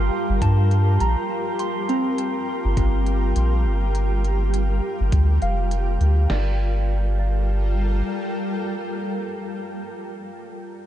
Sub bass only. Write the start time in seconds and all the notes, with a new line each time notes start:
Already playing: G1
0.30 G1
0.42 G2
1.00 A#1
2.65 G1
2.77 G1
3.36 A#1
3.65 G1
5.01 G1
5.13 D2
5.42 F1
6.00 D2
6.30 G1